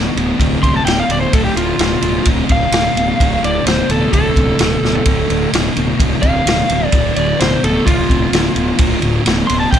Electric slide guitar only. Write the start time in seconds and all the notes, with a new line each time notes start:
0.63 C6
0.77 A5
0.85 G5
1.00 F5
1.11 D5
1.21 C5
1.34 A4
1.44 G4
1.57 F4
1.82 F4
2.52 F5
3.45 D5
3.67 C5
3.91 A4
4.14 A4
6.22 F5
6.87 D5
7.17 D5
7.40 C5
7.64 A4
7.85 F4
9.47 C6
9.60 A5
9.71 G5